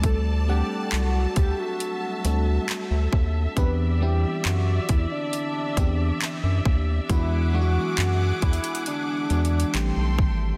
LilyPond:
<<
  \new Staff \with { instrumentName = "String section" } { \time 4/4 \key d \mixolydian \tempo 4 = 68 << { <g a''>1 | d''1 | <gis' d'''>2. <a' c'''>4 | } \\ { <a' d''>4. e''2~ e''8~ | e''1 | fis''2. g''4 | } >> }
  \new Staff \with { instrumentName = "Soft synth lead" } { \time 4/4 \key d \mixolydian a'8 g'8 fis'8 g'16 fis'4.~ fis'16 r8 | b'8 g'8 fis'8 e'16 d'4.~ d'16 r8 | e'8 fis'4 e'8 d'4. r8 | }
  \new Staff \with { instrumentName = "FM electric piano" } { \time 4/4 \key d \mixolydian <g a c' d' a'>8 <g a c' d' fis''>4. r8 <g a c' d' a'>4 r8 | <e b c' d' g'>8 <e b c' d' e'>4. r8 <e b c' d' g'>4 r8 | <e gis b d' fis'>8 <e gis b d' e' fis'>4. r8 <e gis b d' fis'>8 <e g a c' g'>4 | }
  \new Staff \with { instrumentName = "Analog synth bass" } { \clef bass \time 4/4 \key d \mixolydian d,4 c,8 d,16 r8. d,8 r16 d,16 dis,8 | e,4 fis,8 e,16 r8. e,8 r16 fis,16 dis,8 | e,4 fis,8 e,16 r8. e,8 a,,16 b,,16 gis,,8 | }
  \new DrumStaff \with { instrumentName = "Drums" } \drummode { \time 4/4 <hh bd>4 <hc hh>8 <hh bd>8 hh8 hh8 <hc hh>8 bd8 | <hh bd>4 <hc hh>8 <hh bd>8 hh8 <hh bd>8 <hc hh>8 bd8 | <hh bd>4 <hc hh>8 <hh bd>32 hh32 hh32 hh32 \tuplet 3/2 { hh16 r16 r16 hh16 hh16 hh16 } <hc hh>8 bd8 | }
>>